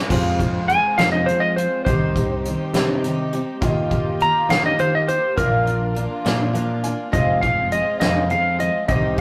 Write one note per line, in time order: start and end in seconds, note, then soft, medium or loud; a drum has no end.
0.00 0.10 G#3 medium
0.00 0.11 C4 medium
0.09 0.77 F2 loud
0.09 0.39 F2 medium
0.09 0.40 C3 medium
0.09 0.40 F3 medium
0.09 1.85 G#3 medium
0.09 0.40 G#3 medium
0.09 1.84 C4 medium
0.09 0.39 C4 medium
0.09 1.82 F4 medium
0.09 1.84 F4 medium
0.09 0.38 F4 medium
0.09 1.84 G#4 medium
0.09 1.83 G#4 medium
0.09 1.84 C5 medium
0.09 kick loud
0.09 crash loud
0.39 0.67 F3 soft
0.39 0.68 G#3 medium
0.39 0.69 C4 medium
0.39 0.68 F4 medium
0.39 kick medium
0.39 closed hi-hat medium
0.68 0.98 F3 medium
0.68 0.98 G#3 medium
0.68 0.97 C4 medium
0.68 0.97 F4 medium
0.68 0.97 G#5 loud
0.68 closed hi-hat medium
0.98 1.28 F2 medium
0.98 1.28 C3 medium
0.98 1.66 F3 medium
0.98 1.26 F3 medium
0.98 1.27 G#3 medium
0.98 1.28 C4 medium
0.98 1.27 F4 medium
0.98 1.11 F5 medium
0.98 snare loud
0.98 closed hi-hat medium
1.12 1.26 D#5 medium
1.26 1.56 F3 medium
1.26 1.57 G#3 medium
1.26 1.56 C4 medium
1.26 1.56 F4 medium
1.26 1.41 C5 medium
1.26 closed hi-hat medium
1.40 1.55 D#5 medium
1.56 1.87 F3 soft
1.56 1.87 G#3 soft
1.56 1.86 C4 soft
1.56 1.86 F4 medium
1.56 1.84 C5 medium
1.56 closed hi-hat medium
1.84 2.54 C2 loud
1.84 2.16 C3 medium
1.84 2.16 D#3 medium
1.84 3.61 G3 medium
1.84 3.61 C4 medium
1.84 3.58 D#4 medium
1.84 3.60 D#4 medium
1.84 3.58 G4 medium
1.84 3.60 G4 medium
1.84 2.99 C5 loud
1.84 3.59 C5 medium
1.84 kick loud
1.84 closed hi-hat medium
1.89 2.17 C4 medium
1.89 2.17 D#4 medium
1.89 2.15 G4 medium
2.16 2.45 C4 soft
2.16 2.46 D#4 soft
2.16 2.45 G4 medium
2.16 kick medium
2.16 closed hi-hat medium
2.45 2.75 D#3 medium
2.45 2.74 C4 medium
2.45 2.74 D#4 medium
2.45 2.74 G4 medium
2.45 closed hi-hat medium
2.74 3.41 C3 medium
2.74 3.05 C3 medium
2.74 3.03 D#3 medium
2.74 3.04 C4 medium
2.74 3.04 D#4 medium
2.74 3.04 G4 medium
2.74 snare loud
2.74 closed hi-hat loud
3.04 3.33 D#3 medium
3.04 3.34 C4 medium
3.04 3.34 D#4 medium
3.04 3.32 G4 medium
3.04 closed hi-hat medium
3.33 3.63 C4 medium
3.33 3.63 D#4 medium
3.33 3.62 G4 medium
3.33 closed hi-hat medium
3.61 4.29 D#2 loud
3.61 3.91 D#3 medium
3.61 5.36 A#3 medium
3.61 3.92 A#3 medium
3.61 5.36 D#4 medium
3.61 5.34 F4 medium
3.61 5.37 F4 medium
3.61 3.91 F4 medium
3.61 5.35 G4 medium
3.61 5.37 G4 medium
3.61 3.90 G4 loud
3.61 5.36 D#5 medium
3.61 kick loud
3.61 closed hi-hat medium
3.91 4.20 A#3 soft
3.91 4.21 F4 medium
3.91 4.20 G4 medium
3.91 kick medium
3.91 closed hi-hat medium
4.20 4.49 D#3 medium
4.20 4.49 A#3 medium
4.20 4.49 F4 medium
4.20 4.48 G4 medium
4.20 4.50 A#5 loud
4.20 closed hi-hat medium
4.49 5.17 D#3 medium
4.49 4.77 D#3 medium
4.49 4.78 A#3 medium
4.49 4.79 F4 medium
4.49 4.79 G4 medium
4.49 4.64 F5 medium
4.49 snare loud
4.49 closed hi-hat medium
4.66 4.79 D#5 medium
4.78 5.08 D#3 medium
4.78 5.08 A#3 medium
4.78 5.07 F4 medium
4.78 5.06 G4 medium
4.78 4.94 C5 medium
4.78 closed hi-hat medium
4.95 5.09 D#5 medium
5.07 5.36 A#3 soft
5.07 5.38 F4 soft
5.07 5.37 G4 medium
5.07 5.37 C5 loud
5.07 closed hi-hat medium
5.36 6.05 A#1 loud
5.36 5.67 A#2 medium
5.36 5.67 F3 medium
5.36 5.67 A#3 medium
5.36 7.12 A#3 medium
5.36 5.66 D4 medium
5.36 7.12 D4 medium
5.36 7.09 F4 medium
5.36 7.12 F4 medium
5.36 5.64 F4 medium
5.36 7.09 A#4 medium
5.36 6.51 A#4 loud
5.36 7.12 A#4 medium
5.36 7.11 D5 medium
5.36 kick loud
5.36 closed hi-hat medium
5.66 5.95 A#3 soft
5.66 5.96 D4 soft
5.66 5.96 F4 medium
5.66 closed hi-hat medium
5.95 6.25 F3 medium
5.95 6.24 A#3 medium
5.95 6.24 D4 medium
5.95 6.23 F4 medium
5.95 closed hi-hat medium
6.25 6.93 A#2 medium
6.25 6.55 A#2 medium
6.25 6.52 F3 medium
6.25 6.53 A#3 medium
6.25 6.54 D4 medium
6.25 6.54 F4 medium
6.25 snare loud
6.25 closed hi-hat medium
6.53 6.83 F3 medium
6.53 6.84 A#3 medium
6.53 6.84 D4 medium
6.53 6.82 F4 medium
6.53 6.82 F5 medium
6.53 closed hi-hat medium
6.84 7.13 A#3 soft
6.84 7.14 D4 medium
6.84 7.13 F4 medium
6.84 7.11 G#5 medium
6.84 closed hi-hat medium
7.12 7.81 F1 loud
7.12 7.42 F2 medium
7.12 7.42 C3 medium
7.12 7.42 F3 medium
7.12 7.43 G#3 medium
7.12 8.88 G#3 medium
7.12 8.87 C4 medium
7.12 7.43 C4 medium
7.12 8.85 F4 medium
7.12 8.88 F4 medium
7.12 7.42 F4 medium
7.12 8.85 G#4 medium
7.12 8.88 G#4 medium
7.12 8.86 C5 medium
7.12 7.42 D#5 loud
7.12 kick loud
7.12 closed hi-hat loud
7.41 7.72 G#3 soft
7.41 7.72 C4 medium
7.41 7.72 F4 medium
7.41 7.71 F5 medium
7.41 kick medium
7.41 closed hi-hat medium
7.46 7.71 F3 soft
7.72 8.01 F3 medium
7.72 8.00 G#3 medium
7.72 8.00 C4 medium
7.72 7.99 F4 medium
7.72 7.99 D#5 loud
7.72 closed hi-hat medium
8.00 8.69 F2 medium
8.00 8.31 F2 medium
8.00 8.31 C3 medium
8.00 8.28 F3 medium
8.00 8.30 G#3 medium
8.00 8.30 C4 medium
8.00 8.30 F4 medium
8.00 8.29 D#5 loud
8.00 snare loud
8.00 closed hi-hat loud
8.30 8.59 F3 medium
8.30 8.60 G#3 medium
8.30 8.58 C4 medium
8.30 8.58 F4 medium
8.30 8.59 F5 medium
8.30 closed hi-hat medium
8.59 8.89 F3 soft
8.59 8.89 G#3 soft
8.59 8.88 C4 soft
8.59 8.89 F4 medium
8.59 8.87 D#5 medium
8.59 closed hi-hat medium
8.88 9.21 C2 loud
8.88 9.18 C3 medium
8.88 9.19 D#3 medium
8.88 9.21 G3 medium
8.88 9.21 C4 medium
8.88 9.18 C4 medium
8.88 9.21 D#4 medium
8.88 9.17 D#4 medium
8.88 9.21 G4 medium
8.88 9.15 G4 medium
8.88 9.21 C5 medium
8.88 9.17 D#5 medium
8.88 kick loud
8.88 closed hi-hat loud
9.17 9.21 G4 medium
9.17 closed hi-hat medium